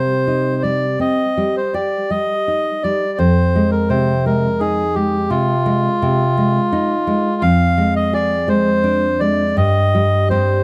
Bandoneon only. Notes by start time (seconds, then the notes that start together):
Already playing: C5
0.62 D5
1.01 D#5
1.57 C5
1.74 D5
2.10 D#5
2.83 D5
3.18 C5
3.71 A#4
3.90 C5
4.26 A#4
4.60 G#4
4.95 G4
5.30 F4
7.42 F5
7.96 D#5
8.14 D5
8.49 C5
9.20 D5
9.57 D#5
10.30 C5